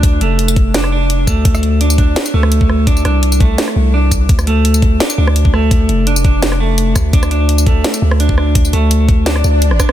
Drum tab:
HH |x-x-x-x-x---x---|x-x-x-x-x---x---|x-x-x-x-x-----x-|x-x-x-x-x---x---|
TB |-----x--------x-|-x---x---x------|-x---x--------x-|-x---x---x------|
SD |--------or------|-r------o--r--r-|--r-----or------|-r------o--r--r-|
BD |o-----o-------o-|o-----o------o--|o-----o-------o-|o-----o------o--|

HH |x-x-x-x-x---x---|x-x-x-x-x---x---|x-x-x-x-x---x---|
TB |-----x--------x-|-x---x---x------|-x--------x---x-|
SD |--------or----r-|-r------o--r--r-|--------or---rrr|
BD |o-----o-------o-|o-----o------o--|o-----o-------o-|